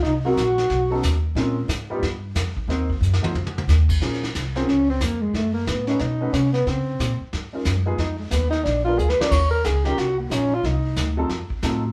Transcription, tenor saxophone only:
X:1
M:4/4
L:1/8
Q:"Swing" 1/4=181
K:Bbm
V:1 name="Tenor saxophone"
E G6 z | z8 | z8 | z3 C D C B, A, |
=A, B, _C D ^D2 ^C =B, | C3 z4 z | E A, _C E =D F (3A _c =d | d B A =G _G B, D F |
E3 z4 z |]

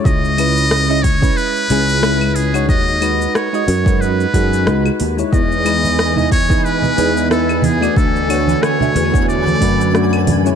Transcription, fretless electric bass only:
X:1
M:4/4
L:1/8
Q:"Swing 16ths" 1/4=91
K:C#m
V:1 name="Fretless electric bass" clef=bass
C,,4 z C,,3 | D,,2 z F,,2 F,, C,, D,, | E,,4 z E,,3 | =D,,2 z E,,2 F,,3 |]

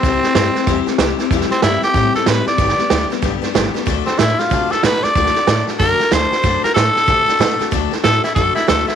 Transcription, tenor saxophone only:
X:1
M:4/4
L:1/8
Q:"Swing" 1/4=187
K:Dmix
V:1 name="Tenor saxophone"
C4- C z3 | z C E G2 A B d- | d3 z4 z | z C E =F2 A B d- |
d3 z _B2 c2- | c _B A6 | z2 A E A E A E |]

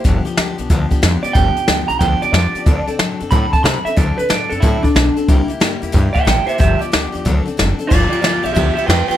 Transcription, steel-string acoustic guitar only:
X:1
M:4/4
L:1/8
Q:"Swing" 1/4=183
K:Gmix
V:1 name="Steel-string acoustic guitar"
[G,,D,F,B,DG] [F,B,DG] [F,B,DG] [F,B,DG] [G,,D,F,B,DG] [F,B,DG] [F,B,DG] [F,B,DG] | [G,,D,F,B,DG] [F,B,DG] [F,B,DG] [F,B,DG] [G,,D,F,B,DG] [F,B,DG] [F,B,DG] [F,B,DG] | [D,^F,CDA] [CDA] [F,CDA] [CDA] [D,F,CDA] [CDA] [F,CDA] [CDA] | [D,^F,CDA] [CDA] [F,CDA] [CDA] [D,F,CDA] [CDA] [F,CDA] [CDA] |
[C,G,_B,EG] [B,EG] [G,B,EG] [B,EG] [C,G,B,EG] [B,EG] [G,B,EG] [B,EG] | [G,,D,F,B,DG] [F,B,DG] [F,B,DG] [F,B,DG] [D,^F,CDA] [CDA] [F,CDA] [CDA] | [G,,D,F,B,FG] [F,B,FG] [F,B,FG] [F,B,FG] [G,,D,F,B,FG] [F,B,FG] [F,B,FG] [F,B,FG] |]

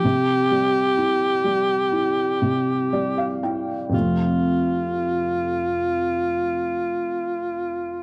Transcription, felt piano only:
X:1
M:4/4
L:1/16
Q:1/4=58
K:F
V:1 name="Felt piano"
z12 d f g2 | z16 |]
V:2 name="Felt piano" clef=bass
C,2 G,2 E2 G,2 E2 C,2 G,2 E2 | [F,,C,F,A,C]16 |]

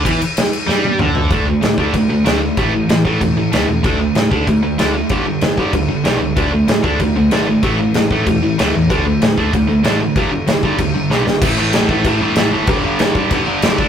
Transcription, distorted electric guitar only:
X:1
M:4/4
L:1/8
Q:1/4=190
K:Amix
V:1 name="Distorted electric guitar" clef=bass
E, z3 G,2 D,2 | [D,A,D] [D,A,] [D,A,] [D,A,D] [D,A,] [D,A,] [D,A,D] [D,A,] | [A,,E,A,] [A,,E,] [A,,E,] [A,,E,A,] [A,,E,] [A,,E,] [A,,E,A,] [A,,E,] | [D,A,D] [D,A,] [D,A,] [D,A,D] [D,A,] [D,A,] [D,A,D] [D,A,] |
[G,,D,G,] [G,,D,] [G,,D,] [G,,D,G,] [G,,D,] [G,,D,] [G,,D,G,] [G,,D,] | [D,A,D] [D,A,] [D,A,] [D,A,D] [D,A,] [D,A,] [D,A,D] [D,A,] | [A,,E,A,] [A,,E,] [A,,E,] [A,,E,A,] [A,,E,] [A,,E,] [A,,E,A,] [A,,E,] | [D,A,D] [D,A,] [D,A,] [D,A,D] [D,A,] [D,A,] [D,A,D] [D,A,] |
[G,,D,G,] [G,,D,] [G,,D,] [G,,D,G,] [G,,D,] [G,,D,] [G,,D,G,] [G,,D,] | [A,,E,A,] [A,,E,A,] [A,,E,A,] [A,,E,A,] [A,,E,A,] [A,,E,A,] [A,,E,A,] [A,,E,A,] | [G,,D,G,] [G,,D,G,] [G,,D,G,] [G,,D,G,] [G,,D,G,] [G,,D,G,] [G,,D,G,] [D,A,D] |]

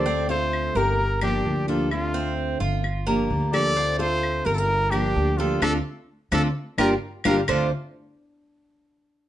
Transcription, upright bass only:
X:1
M:4/4
L:1/8
Q:1/4=129
K:Dm
V:1 name="Upright bass" clef=bass
D,,3 G,,,3 D,,2- | D,,3 G,,,3 D,,2- | D,,3 G,,,3 D,,2 | D,, z2 D,, z G,,, z G,,, |
D,, z6 z |]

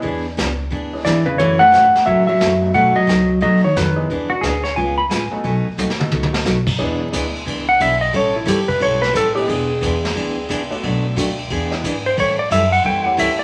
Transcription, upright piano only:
X:1
M:4/4
L:1/8
Q:"Swing" 1/4=178
K:Emix
V:1 name="Upright piano"
z4 z [G,B,DEG]3 | z6 z [A,B,^DFA] | z6 z [G,B,DEG] | z6 z [A,B,^DFA] |
z3 [A,B,^DFA]2 [A,B,DFA] z2 | [G,B,DEG]2 [G,B,DEG] z4 z | z6 z [G,B,DEG] | z6 z [A,B,DFA]- |
[A,B,DFA]2 z3 [G,B,DEG] z2 | z4 z [=G,A,CE=G]3 |]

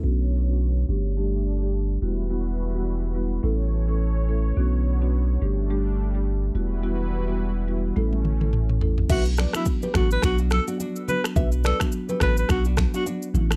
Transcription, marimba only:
X:1
M:4/4
L:1/16
Q:"Swing 16ths" 1/4=106
K:Bm
V:1 name="Marimba"
[B,CDF]3 [B,CDF] z2 [G,A,DG]2 [G,A,DG]3 [G,A,DG]3 [G,B,EF]2 | [G,B,EF]3 [G,B,EF] z2 [G,B,EF]2 [A,CEA]3 [A,CEA]3 [A,CEA]2 | [B,CDF]3 [B,CDF] z2 [G,A,DG]2 [G,A,DG]3 [G,A,DG]3 [G,B,EF]2 | [G,B,EF]3 [G,B,EF] z2 [G,B,EF]2 [A,CEA]3 [A,CEA]3 [A,CEA]2 |
[F,B,DF]3 [F,B,DF]3 [F,B,DF]2 [F,B,DF]3 [F,B,DF] z2 [F,B,DF]2 | [F,B,DF]3 [F,B,DF]3 [F,B,DF]2 [F,B,DF]3 [F,B,DF] z2 [E,A,CE]2 |]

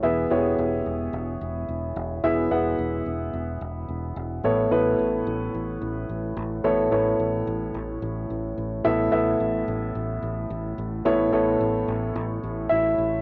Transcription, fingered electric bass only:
X:1
M:4/4
L:1/8
Q:1/4=109
K:Amix
V:1 name="Fingered electric bass" clef=bass
E,,, E,,, E,,, E,,, E,,, E,,, E,,, E,,, | E,,, E,,, E,,, E,,, E,,, E,,, E,,, E,,, | A,,, A,,, A,,, A,,, A,,, A,,, A,,, A,,, | A,,, A,,, A,,, A,,, A,,, A,,, A,,, A,,, |
A,,, A,,, A,,, A,,, A,,, A,,, A,,, A,,, | A,,, A,,, A,,, A,,, A,,, A,,, A,,, A,,, |]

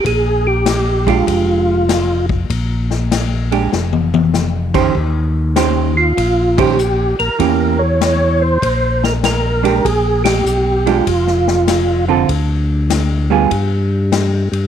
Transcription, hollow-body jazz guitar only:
X:1
M:4/4
L:1/8
Q:"Swing" 1/4=98
K:Bbmix
V:1 name="Hollow-body jazz guitar"
z3 [A,DG]3 z2 | z3 [A,DG] z3 [E,_DGc] | z2 [E,_DGc] z2 [E,DGc] z2 | [=E,B,^CG] z6 [A,DG] |
z3 [A,DG] z3 [D,CF=A] | z3 [G,_CFA] z4 |]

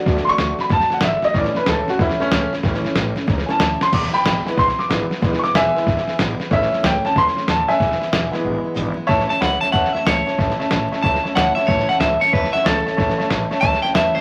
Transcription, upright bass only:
X:1
M:4/4
L:1/8
Q:"Swing" 1/4=186
K:A
V:1 name="Upright bass" clef=bass
D,, z D,, z F,, z G,,, z | A,,, z C,, z E,, z C,, z | A,,, z A,,, z C,, z D,, z | E,,, z G,,, z B,,, z G,,, z |
E,,, z E,,, z G,,, z A,,, z | A,,, z C,, z E,, z ^D,, z | E,,, z E,,, z G,,, z G,,, z | A,,, z C,, z E,, z C,, z |
A,,, z A,,, z C,, z D,, z | A,,, z C,, z E,, z C,, z | A,,, z A,,, z C,, z E,, z |]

